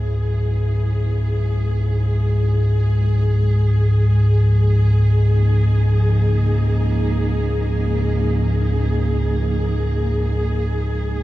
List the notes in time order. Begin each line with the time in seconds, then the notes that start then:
Already playing: C#2 G#2 C#3 F#3 B3 E4 G#4
3.74 F3
4.22 A#3
4.61 D#4